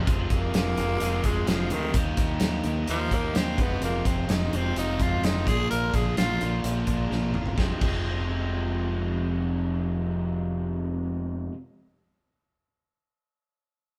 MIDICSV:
0, 0, Header, 1, 6, 480
1, 0, Start_track
1, 0, Tempo, 470958
1, 62, Time_signature, 4, 2, 24, 8
1, 14255, End_track
2, 0, Start_track
2, 0, Title_t, "Tenor saxophone"
2, 0, Program_c, 0, 66
2, 322, Note_on_c, 0, 58, 103
2, 1273, Note_on_c, 0, 56, 83
2, 1289, Note_off_c, 0, 58, 0
2, 1514, Note_on_c, 0, 53, 84
2, 1530, Note_off_c, 0, 56, 0
2, 1764, Note_on_c, 0, 51, 95
2, 1779, Note_off_c, 0, 53, 0
2, 1979, Note_off_c, 0, 51, 0
2, 2959, Note_on_c, 0, 53, 99
2, 3200, Note_on_c, 0, 58, 85
2, 3215, Note_off_c, 0, 53, 0
2, 3434, Note_on_c, 0, 60, 84
2, 3449, Note_off_c, 0, 58, 0
2, 3687, Note_on_c, 0, 59, 86
2, 3702, Note_off_c, 0, 60, 0
2, 3898, Note_off_c, 0, 59, 0
2, 3916, Note_on_c, 0, 58, 82
2, 4145, Note_on_c, 0, 60, 75
2, 4160, Note_off_c, 0, 58, 0
2, 4367, Note_off_c, 0, 60, 0
2, 4386, Note_on_c, 0, 63, 72
2, 4646, Note_on_c, 0, 60, 81
2, 4661, Note_off_c, 0, 63, 0
2, 4857, Note_off_c, 0, 60, 0
2, 4876, Note_on_c, 0, 63, 82
2, 5112, Note_on_c, 0, 65, 83
2, 5127, Note_off_c, 0, 63, 0
2, 5344, Note_on_c, 0, 63, 78
2, 5359, Note_off_c, 0, 65, 0
2, 5582, Note_on_c, 0, 68, 92
2, 5598, Note_off_c, 0, 63, 0
2, 5805, Note_off_c, 0, 68, 0
2, 5814, Note_on_c, 0, 70, 85
2, 6066, Note_on_c, 0, 68, 76
2, 6081, Note_off_c, 0, 70, 0
2, 6287, Note_off_c, 0, 68, 0
2, 6294, Note_on_c, 0, 65, 97
2, 6754, Note_off_c, 0, 65, 0
2, 14255, End_track
3, 0, Start_track
3, 0, Title_t, "Overdriven electric guitar"
3, 0, Program_c, 1, 29
3, 60, Note_on_c, 1, 41, 95
3, 71, Note_on_c, 1, 48, 90
3, 73, Note_on_c, 1, 53, 88
3, 78, Note_on_c, 1, 56, 91
3, 80, Note_on_c, 1, 60, 98
3, 84, Note_on_c, 1, 68, 87
3, 281, Note_off_c, 1, 68, 0
3, 294, Note_off_c, 1, 60, 0
3, 294, Note_on_c, 1, 68, 66
3, 303, Note_off_c, 1, 56, 0
3, 306, Note_off_c, 1, 53, 0
3, 306, Note_on_c, 1, 60, 68
3, 315, Note_on_c, 1, 56, 58
3, 318, Note_on_c, 1, 53, 54
3, 529, Note_off_c, 1, 41, 0
3, 542, Note_off_c, 1, 48, 0
3, 542, Note_on_c, 1, 41, 91
3, 545, Note_off_c, 1, 53, 0
3, 552, Note_off_c, 1, 56, 0
3, 554, Note_on_c, 1, 48, 94
3, 555, Note_off_c, 1, 60, 0
3, 557, Note_on_c, 1, 53, 88
3, 558, Note_off_c, 1, 68, 0
3, 564, Note_on_c, 1, 56, 88
3, 567, Note_on_c, 1, 60, 98
3, 570, Note_on_c, 1, 68, 88
3, 766, Note_off_c, 1, 68, 0
3, 778, Note_on_c, 1, 68, 68
3, 780, Note_off_c, 1, 60, 0
3, 785, Note_off_c, 1, 56, 0
3, 791, Note_off_c, 1, 53, 0
3, 792, Note_on_c, 1, 60, 63
3, 797, Note_on_c, 1, 56, 61
3, 803, Note_on_c, 1, 53, 55
3, 1009, Note_off_c, 1, 53, 0
3, 1016, Note_off_c, 1, 41, 0
3, 1019, Note_off_c, 1, 56, 0
3, 1021, Note_on_c, 1, 53, 66
3, 1022, Note_off_c, 1, 48, 0
3, 1027, Note_off_c, 1, 60, 0
3, 1031, Note_on_c, 1, 56, 72
3, 1032, Note_off_c, 1, 68, 0
3, 1039, Note_on_c, 1, 60, 74
3, 1044, Note_on_c, 1, 68, 77
3, 1243, Note_off_c, 1, 68, 0
3, 1252, Note_off_c, 1, 60, 0
3, 1255, Note_on_c, 1, 68, 75
3, 1259, Note_off_c, 1, 56, 0
3, 1264, Note_on_c, 1, 60, 67
3, 1265, Note_off_c, 1, 53, 0
3, 1271, Note_on_c, 1, 56, 59
3, 1278, Note_on_c, 1, 53, 57
3, 1499, Note_on_c, 1, 41, 85
3, 1502, Note_off_c, 1, 53, 0
3, 1506, Note_off_c, 1, 56, 0
3, 1507, Note_off_c, 1, 60, 0
3, 1507, Note_on_c, 1, 48, 82
3, 1514, Note_on_c, 1, 53, 91
3, 1515, Note_off_c, 1, 68, 0
3, 1518, Note_on_c, 1, 56, 90
3, 1519, Note_on_c, 1, 60, 80
3, 1528, Note_on_c, 1, 68, 87
3, 1723, Note_off_c, 1, 68, 0
3, 1727, Note_off_c, 1, 60, 0
3, 1735, Note_on_c, 1, 68, 72
3, 1739, Note_off_c, 1, 56, 0
3, 1739, Note_on_c, 1, 60, 67
3, 1743, Note_off_c, 1, 53, 0
3, 1751, Note_on_c, 1, 56, 58
3, 1755, Note_on_c, 1, 53, 58
3, 1957, Note_off_c, 1, 68, 0
3, 1958, Note_off_c, 1, 41, 0
3, 1959, Note_off_c, 1, 60, 0
3, 1962, Note_off_c, 1, 48, 0
3, 1965, Note_off_c, 1, 56, 0
3, 1967, Note_off_c, 1, 53, 0
3, 1984, Note_on_c, 1, 51, 82
3, 1997, Note_on_c, 1, 58, 89
3, 1999, Note_on_c, 1, 63, 86
3, 2002, Note_on_c, 1, 67, 86
3, 2201, Note_off_c, 1, 67, 0
3, 2213, Note_on_c, 1, 67, 67
3, 2214, Note_off_c, 1, 63, 0
3, 2221, Note_off_c, 1, 58, 0
3, 2226, Note_on_c, 1, 63, 63
3, 2233, Note_on_c, 1, 58, 60
3, 2440, Note_off_c, 1, 51, 0
3, 2449, Note_off_c, 1, 58, 0
3, 2453, Note_on_c, 1, 51, 92
3, 2454, Note_off_c, 1, 63, 0
3, 2460, Note_off_c, 1, 67, 0
3, 2461, Note_on_c, 1, 58, 96
3, 2466, Note_on_c, 1, 63, 89
3, 2473, Note_on_c, 1, 67, 91
3, 2681, Note_off_c, 1, 67, 0
3, 2693, Note_on_c, 1, 67, 67
3, 2695, Note_off_c, 1, 63, 0
3, 2701, Note_off_c, 1, 58, 0
3, 2708, Note_on_c, 1, 63, 68
3, 2713, Note_on_c, 1, 58, 59
3, 2907, Note_off_c, 1, 51, 0
3, 2914, Note_off_c, 1, 58, 0
3, 2919, Note_on_c, 1, 51, 62
3, 2922, Note_off_c, 1, 63, 0
3, 2926, Note_on_c, 1, 58, 66
3, 2932, Note_off_c, 1, 67, 0
3, 2934, Note_on_c, 1, 63, 75
3, 2944, Note_on_c, 1, 67, 73
3, 3153, Note_off_c, 1, 67, 0
3, 3160, Note_off_c, 1, 63, 0
3, 3165, Note_on_c, 1, 67, 66
3, 3172, Note_off_c, 1, 58, 0
3, 3173, Note_on_c, 1, 63, 58
3, 3185, Note_on_c, 1, 58, 60
3, 3387, Note_off_c, 1, 51, 0
3, 3392, Note_off_c, 1, 58, 0
3, 3399, Note_on_c, 1, 51, 84
3, 3402, Note_off_c, 1, 63, 0
3, 3404, Note_on_c, 1, 58, 85
3, 3409, Note_off_c, 1, 67, 0
3, 3414, Note_on_c, 1, 63, 84
3, 3421, Note_on_c, 1, 67, 87
3, 3627, Note_off_c, 1, 51, 0
3, 3629, Note_off_c, 1, 58, 0
3, 3633, Note_off_c, 1, 67, 0
3, 3634, Note_off_c, 1, 63, 0
3, 3637, Note_on_c, 1, 65, 88
3, 3640, Note_on_c, 1, 60, 81
3, 3643, Note_on_c, 1, 56, 73
3, 3647, Note_on_c, 1, 53, 70
3, 3652, Note_on_c, 1, 41, 63
3, 3652, Note_on_c, 1, 48, 73
3, 3870, Note_off_c, 1, 41, 0
3, 3876, Note_off_c, 1, 48, 0
3, 3882, Note_on_c, 1, 41, 76
3, 3884, Note_off_c, 1, 56, 0
3, 3888, Note_on_c, 1, 48, 79
3, 3891, Note_off_c, 1, 60, 0
3, 3893, Note_off_c, 1, 53, 0
3, 3897, Note_on_c, 1, 53, 92
3, 3897, Note_on_c, 1, 56, 90
3, 3903, Note_off_c, 1, 65, 0
3, 3904, Note_on_c, 1, 60, 81
3, 3907, Note_on_c, 1, 65, 87
3, 4113, Note_off_c, 1, 60, 0
3, 4115, Note_off_c, 1, 65, 0
3, 4119, Note_on_c, 1, 65, 62
3, 4120, Note_off_c, 1, 56, 0
3, 4125, Note_on_c, 1, 60, 61
3, 4132, Note_on_c, 1, 56, 58
3, 4134, Note_off_c, 1, 53, 0
3, 4139, Note_on_c, 1, 53, 56
3, 4337, Note_off_c, 1, 41, 0
3, 4341, Note_off_c, 1, 48, 0
3, 4348, Note_off_c, 1, 56, 0
3, 4349, Note_on_c, 1, 41, 86
3, 4351, Note_off_c, 1, 60, 0
3, 4353, Note_on_c, 1, 48, 80
3, 4360, Note_off_c, 1, 53, 0
3, 4360, Note_on_c, 1, 56, 91
3, 4364, Note_on_c, 1, 53, 85
3, 4364, Note_on_c, 1, 60, 90
3, 4371, Note_off_c, 1, 65, 0
3, 4375, Note_on_c, 1, 65, 96
3, 4586, Note_off_c, 1, 60, 0
3, 4593, Note_off_c, 1, 65, 0
3, 4597, Note_on_c, 1, 65, 62
3, 4598, Note_on_c, 1, 60, 58
3, 4599, Note_off_c, 1, 56, 0
3, 4609, Note_off_c, 1, 53, 0
3, 4611, Note_on_c, 1, 56, 57
3, 4613, Note_on_c, 1, 53, 56
3, 4824, Note_off_c, 1, 53, 0
3, 4827, Note_off_c, 1, 56, 0
3, 4828, Note_on_c, 1, 53, 63
3, 4833, Note_off_c, 1, 60, 0
3, 4835, Note_off_c, 1, 41, 0
3, 4837, Note_off_c, 1, 48, 0
3, 4839, Note_on_c, 1, 56, 65
3, 4845, Note_on_c, 1, 60, 70
3, 4847, Note_off_c, 1, 65, 0
3, 4851, Note_on_c, 1, 65, 71
3, 5072, Note_off_c, 1, 65, 0
3, 5076, Note_off_c, 1, 60, 0
3, 5076, Note_on_c, 1, 65, 63
3, 5079, Note_off_c, 1, 56, 0
3, 5088, Note_on_c, 1, 60, 67
3, 5092, Note_on_c, 1, 56, 56
3, 5096, Note_off_c, 1, 53, 0
3, 5100, Note_on_c, 1, 53, 57
3, 5312, Note_on_c, 1, 41, 86
3, 5314, Note_off_c, 1, 56, 0
3, 5317, Note_off_c, 1, 53, 0
3, 5320, Note_on_c, 1, 48, 88
3, 5321, Note_off_c, 1, 60, 0
3, 5321, Note_on_c, 1, 53, 84
3, 5326, Note_off_c, 1, 65, 0
3, 5326, Note_on_c, 1, 56, 90
3, 5330, Note_on_c, 1, 65, 94
3, 5333, Note_on_c, 1, 60, 82
3, 5543, Note_off_c, 1, 41, 0
3, 5546, Note_off_c, 1, 48, 0
3, 5549, Note_off_c, 1, 56, 0
3, 5551, Note_off_c, 1, 65, 0
3, 5553, Note_off_c, 1, 60, 0
3, 5555, Note_on_c, 1, 65, 77
3, 5558, Note_on_c, 1, 62, 87
3, 5564, Note_off_c, 1, 53, 0
3, 5568, Note_on_c, 1, 50, 69
3, 5569, Note_on_c, 1, 58, 76
3, 5579, Note_on_c, 1, 46, 64
3, 5779, Note_off_c, 1, 46, 0
3, 5788, Note_off_c, 1, 50, 0
3, 5792, Note_off_c, 1, 58, 0
3, 5792, Note_on_c, 1, 46, 84
3, 5796, Note_off_c, 1, 62, 0
3, 5800, Note_on_c, 1, 50, 79
3, 5804, Note_off_c, 1, 65, 0
3, 5805, Note_on_c, 1, 58, 87
3, 5808, Note_on_c, 1, 62, 91
3, 5816, Note_on_c, 1, 65, 88
3, 6028, Note_off_c, 1, 65, 0
3, 6041, Note_on_c, 1, 65, 62
3, 6044, Note_off_c, 1, 62, 0
3, 6049, Note_off_c, 1, 58, 0
3, 6056, Note_on_c, 1, 62, 57
3, 6061, Note_on_c, 1, 58, 49
3, 6258, Note_off_c, 1, 46, 0
3, 6265, Note_off_c, 1, 50, 0
3, 6270, Note_on_c, 1, 46, 82
3, 6274, Note_off_c, 1, 58, 0
3, 6277, Note_on_c, 1, 50, 84
3, 6278, Note_off_c, 1, 62, 0
3, 6278, Note_off_c, 1, 65, 0
3, 6286, Note_on_c, 1, 58, 90
3, 6290, Note_on_c, 1, 62, 84
3, 6290, Note_on_c, 1, 65, 87
3, 6498, Note_off_c, 1, 65, 0
3, 6510, Note_on_c, 1, 65, 68
3, 6512, Note_off_c, 1, 62, 0
3, 6523, Note_off_c, 1, 58, 0
3, 6524, Note_on_c, 1, 62, 61
3, 6535, Note_on_c, 1, 58, 51
3, 6738, Note_off_c, 1, 50, 0
3, 6747, Note_off_c, 1, 58, 0
3, 6751, Note_on_c, 1, 50, 60
3, 6756, Note_off_c, 1, 46, 0
3, 6760, Note_off_c, 1, 62, 0
3, 6760, Note_on_c, 1, 58, 60
3, 6764, Note_off_c, 1, 65, 0
3, 6772, Note_on_c, 1, 62, 69
3, 6776, Note_on_c, 1, 65, 70
3, 6975, Note_off_c, 1, 65, 0
3, 6986, Note_off_c, 1, 62, 0
3, 6988, Note_on_c, 1, 65, 62
3, 6998, Note_off_c, 1, 58, 0
3, 6999, Note_on_c, 1, 62, 61
3, 7010, Note_on_c, 1, 58, 50
3, 7217, Note_off_c, 1, 50, 0
3, 7219, Note_on_c, 1, 46, 84
3, 7221, Note_off_c, 1, 58, 0
3, 7227, Note_off_c, 1, 62, 0
3, 7227, Note_off_c, 1, 65, 0
3, 7229, Note_on_c, 1, 50, 82
3, 7233, Note_on_c, 1, 58, 78
3, 7239, Note_on_c, 1, 62, 82
3, 7239, Note_on_c, 1, 65, 94
3, 7446, Note_off_c, 1, 65, 0
3, 7459, Note_on_c, 1, 65, 61
3, 7461, Note_off_c, 1, 62, 0
3, 7473, Note_off_c, 1, 58, 0
3, 7473, Note_on_c, 1, 62, 57
3, 7485, Note_on_c, 1, 58, 55
3, 7697, Note_off_c, 1, 46, 0
3, 7697, Note_off_c, 1, 65, 0
3, 7702, Note_off_c, 1, 50, 0
3, 7702, Note_on_c, 1, 41, 74
3, 7704, Note_off_c, 1, 62, 0
3, 7710, Note_off_c, 1, 58, 0
3, 7716, Note_on_c, 1, 48, 79
3, 7720, Note_on_c, 1, 53, 80
3, 7725, Note_on_c, 1, 56, 85
3, 7736, Note_on_c, 1, 60, 90
3, 7742, Note_on_c, 1, 68, 90
3, 7945, Note_off_c, 1, 41, 0
3, 7949, Note_on_c, 1, 41, 75
3, 7955, Note_off_c, 1, 48, 0
3, 7959, Note_off_c, 1, 53, 0
3, 7959, Note_on_c, 1, 48, 78
3, 7964, Note_on_c, 1, 53, 89
3, 7967, Note_off_c, 1, 56, 0
3, 7971, Note_on_c, 1, 56, 92
3, 7976, Note_off_c, 1, 60, 0
3, 7980, Note_on_c, 1, 60, 94
3, 7982, Note_off_c, 1, 68, 0
3, 7986, Note_on_c, 1, 68, 83
3, 11725, Note_off_c, 1, 41, 0
3, 11735, Note_off_c, 1, 48, 0
3, 11739, Note_off_c, 1, 53, 0
3, 11747, Note_off_c, 1, 56, 0
3, 11755, Note_off_c, 1, 60, 0
3, 11761, Note_off_c, 1, 68, 0
3, 14255, End_track
4, 0, Start_track
4, 0, Title_t, "Overdriven electric guitar"
4, 0, Program_c, 2, 29
4, 97, Note_on_c, 2, 65, 104
4, 1017, Note_off_c, 2, 65, 0
4, 1047, Note_on_c, 2, 65, 89
4, 1967, Note_on_c, 2, 55, 100
4, 1970, Note_off_c, 2, 65, 0
4, 2910, Note_off_c, 2, 55, 0
4, 2930, Note_on_c, 2, 55, 77
4, 3631, Note_off_c, 2, 55, 0
4, 4615, Note_on_c, 2, 48, 73
4, 4620, Note_on_c, 2, 41, 69
4, 5547, Note_off_c, 2, 48, 0
4, 5556, Note_off_c, 2, 41, 0
4, 5559, Note_on_c, 2, 53, 83
4, 6506, Note_off_c, 2, 53, 0
4, 6530, Note_on_c, 2, 53, 68
4, 6534, Note_on_c, 2, 46, 65
4, 7472, Note_off_c, 2, 53, 0
4, 7474, Note_off_c, 2, 46, 0
4, 14255, End_track
5, 0, Start_track
5, 0, Title_t, "Fingered electric bass"
5, 0, Program_c, 3, 33
5, 81, Note_on_c, 3, 29, 90
5, 291, Note_off_c, 3, 29, 0
5, 312, Note_on_c, 3, 29, 77
5, 525, Note_off_c, 3, 29, 0
5, 551, Note_on_c, 3, 29, 81
5, 764, Note_off_c, 3, 29, 0
5, 788, Note_on_c, 3, 29, 89
5, 1002, Note_off_c, 3, 29, 0
5, 1027, Note_on_c, 3, 29, 85
5, 1241, Note_off_c, 3, 29, 0
5, 1267, Note_on_c, 3, 29, 78
5, 1480, Note_off_c, 3, 29, 0
5, 1496, Note_on_c, 3, 29, 81
5, 1714, Note_off_c, 3, 29, 0
5, 1740, Note_on_c, 3, 38, 77
5, 1955, Note_off_c, 3, 38, 0
5, 1986, Note_on_c, 3, 39, 87
5, 2198, Note_off_c, 3, 39, 0
5, 2221, Note_on_c, 3, 39, 75
5, 2435, Note_off_c, 3, 39, 0
5, 2459, Note_on_c, 3, 39, 82
5, 2673, Note_off_c, 3, 39, 0
5, 2696, Note_on_c, 3, 39, 82
5, 2912, Note_off_c, 3, 39, 0
5, 2943, Note_on_c, 3, 39, 88
5, 3155, Note_off_c, 3, 39, 0
5, 3172, Note_on_c, 3, 39, 76
5, 3389, Note_off_c, 3, 39, 0
5, 3429, Note_on_c, 3, 39, 80
5, 3638, Note_off_c, 3, 39, 0
5, 3656, Note_on_c, 3, 29, 78
5, 3871, Note_off_c, 3, 29, 0
5, 3886, Note_on_c, 3, 29, 86
5, 4106, Note_off_c, 3, 29, 0
5, 4138, Note_on_c, 3, 29, 84
5, 4352, Note_off_c, 3, 29, 0
5, 4371, Note_on_c, 3, 29, 78
5, 4588, Note_off_c, 3, 29, 0
5, 4616, Note_on_c, 3, 29, 80
5, 4831, Note_off_c, 3, 29, 0
5, 4854, Note_on_c, 3, 29, 88
5, 5069, Note_off_c, 3, 29, 0
5, 5096, Note_on_c, 3, 29, 78
5, 5310, Note_off_c, 3, 29, 0
5, 5318, Note_on_c, 3, 29, 75
5, 5540, Note_off_c, 3, 29, 0
5, 5575, Note_on_c, 3, 34, 78
5, 5790, Note_off_c, 3, 34, 0
5, 5822, Note_on_c, 3, 34, 84
5, 6034, Note_off_c, 3, 34, 0
5, 6052, Note_on_c, 3, 34, 76
5, 6268, Note_off_c, 3, 34, 0
5, 6292, Note_on_c, 3, 34, 78
5, 6509, Note_off_c, 3, 34, 0
5, 6537, Note_on_c, 3, 34, 80
5, 6751, Note_off_c, 3, 34, 0
5, 6767, Note_on_c, 3, 34, 85
5, 6986, Note_off_c, 3, 34, 0
5, 7012, Note_on_c, 3, 34, 75
5, 7229, Note_off_c, 3, 34, 0
5, 7239, Note_on_c, 3, 34, 75
5, 7462, Note_off_c, 3, 34, 0
5, 7483, Note_on_c, 3, 31, 74
5, 7704, Note_off_c, 3, 31, 0
5, 7730, Note_on_c, 3, 29, 87
5, 7861, Note_off_c, 3, 29, 0
5, 7968, Note_on_c, 3, 29, 80
5, 11703, Note_off_c, 3, 29, 0
5, 14255, End_track
6, 0, Start_track
6, 0, Title_t, "Drums"
6, 74, Note_on_c, 9, 36, 110
6, 77, Note_on_c, 9, 42, 75
6, 176, Note_off_c, 9, 36, 0
6, 179, Note_off_c, 9, 42, 0
6, 308, Note_on_c, 9, 42, 61
6, 309, Note_on_c, 9, 36, 86
6, 410, Note_off_c, 9, 42, 0
6, 411, Note_off_c, 9, 36, 0
6, 549, Note_on_c, 9, 42, 81
6, 560, Note_on_c, 9, 38, 96
6, 651, Note_off_c, 9, 42, 0
6, 661, Note_off_c, 9, 38, 0
6, 790, Note_on_c, 9, 42, 60
6, 891, Note_off_c, 9, 42, 0
6, 1023, Note_on_c, 9, 42, 80
6, 1125, Note_off_c, 9, 42, 0
6, 1260, Note_on_c, 9, 42, 60
6, 1262, Note_on_c, 9, 36, 75
6, 1362, Note_off_c, 9, 42, 0
6, 1364, Note_off_c, 9, 36, 0
6, 1502, Note_on_c, 9, 42, 78
6, 1512, Note_on_c, 9, 38, 98
6, 1604, Note_off_c, 9, 42, 0
6, 1614, Note_off_c, 9, 38, 0
6, 1736, Note_on_c, 9, 42, 56
6, 1838, Note_off_c, 9, 42, 0
6, 1976, Note_on_c, 9, 42, 83
6, 1978, Note_on_c, 9, 36, 99
6, 2078, Note_off_c, 9, 42, 0
6, 2080, Note_off_c, 9, 36, 0
6, 2213, Note_on_c, 9, 42, 64
6, 2216, Note_on_c, 9, 36, 83
6, 2224, Note_on_c, 9, 38, 30
6, 2315, Note_off_c, 9, 42, 0
6, 2318, Note_off_c, 9, 36, 0
6, 2326, Note_off_c, 9, 38, 0
6, 2444, Note_on_c, 9, 42, 73
6, 2454, Note_on_c, 9, 38, 100
6, 2546, Note_off_c, 9, 42, 0
6, 2556, Note_off_c, 9, 38, 0
6, 2687, Note_on_c, 9, 42, 56
6, 2789, Note_off_c, 9, 42, 0
6, 2931, Note_on_c, 9, 42, 78
6, 3033, Note_off_c, 9, 42, 0
6, 3173, Note_on_c, 9, 36, 73
6, 3175, Note_on_c, 9, 42, 57
6, 3274, Note_off_c, 9, 36, 0
6, 3277, Note_off_c, 9, 42, 0
6, 3414, Note_on_c, 9, 42, 71
6, 3424, Note_on_c, 9, 38, 98
6, 3515, Note_off_c, 9, 42, 0
6, 3526, Note_off_c, 9, 38, 0
6, 3650, Note_on_c, 9, 36, 97
6, 3653, Note_on_c, 9, 42, 50
6, 3752, Note_off_c, 9, 36, 0
6, 3755, Note_off_c, 9, 42, 0
6, 3891, Note_on_c, 9, 42, 74
6, 3993, Note_off_c, 9, 42, 0
6, 4131, Note_on_c, 9, 36, 78
6, 4133, Note_on_c, 9, 42, 59
6, 4233, Note_off_c, 9, 36, 0
6, 4235, Note_off_c, 9, 42, 0
6, 4371, Note_on_c, 9, 42, 75
6, 4381, Note_on_c, 9, 38, 96
6, 4473, Note_off_c, 9, 42, 0
6, 4483, Note_off_c, 9, 38, 0
6, 4617, Note_on_c, 9, 42, 59
6, 4719, Note_off_c, 9, 42, 0
6, 4856, Note_on_c, 9, 42, 73
6, 4958, Note_off_c, 9, 42, 0
6, 5091, Note_on_c, 9, 36, 73
6, 5092, Note_on_c, 9, 42, 55
6, 5193, Note_off_c, 9, 36, 0
6, 5194, Note_off_c, 9, 42, 0
6, 5337, Note_on_c, 9, 42, 75
6, 5347, Note_on_c, 9, 38, 96
6, 5439, Note_off_c, 9, 42, 0
6, 5449, Note_off_c, 9, 38, 0
6, 5573, Note_on_c, 9, 36, 86
6, 5581, Note_on_c, 9, 42, 58
6, 5675, Note_off_c, 9, 36, 0
6, 5683, Note_off_c, 9, 42, 0
6, 5818, Note_on_c, 9, 42, 82
6, 5920, Note_off_c, 9, 42, 0
6, 6050, Note_on_c, 9, 36, 81
6, 6052, Note_on_c, 9, 42, 60
6, 6063, Note_on_c, 9, 38, 30
6, 6152, Note_off_c, 9, 36, 0
6, 6154, Note_off_c, 9, 42, 0
6, 6165, Note_off_c, 9, 38, 0
6, 6291, Note_on_c, 9, 42, 76
6, 6301, Note_on_c, 9, 38, 98
6, 6393, Note_off_c, 9, 42, 0
6, 6403, Note_off_c, 9, 38, 0
6, 6532, Note_on_c, 9, 42, 59
6, 6633, Note_off_c, 9, 42, 0
6, 6769, Note_on_c, 9, 42, 79
6, 6871, Note_off_c, 9, 42, 0
6, 7001, Note_on_c, 9, 42, 55
6, 7005, Note_on_c, 9, 36, 74
6, 7103, Note_off_c, 9, 42, 0
6, 7107, Note_off_c, 9, 36, 0
6, 7250, Note_on_c, 9, 38, 46
6, 7352, Note_off_c, 9, 38, 0
6, 7362, Note_on_c, 9, 48, 53
6, 7464, Note_off_c, 9, 48, 0
6, 7481, Note_on_c, 9, 45, 70
6, 7583, Note_off_c, 9, 45, 0
6, 7600, Note_on_c, 9, 43, 69
6, 7702, Note_off_c, 9, 43, 0
6, 7722, Note_on_c, 9, 36, 89
6, 7729, Note_on_c, 9, 38, 79
6, 7824, Note_off_c, 9, 36, 0
6, 7831, Note_off_c, 9, 38, 0
6, 7963, Note_on_c, 9, 49, 81
6, 7964, Note_on_c, 9, 36, 94
6, 8065, Note_off_c, 9, 49, 0
6, 8066, Note_off_c, 9, 36, 0
6, 14255, End_track
0, 0, End_of_file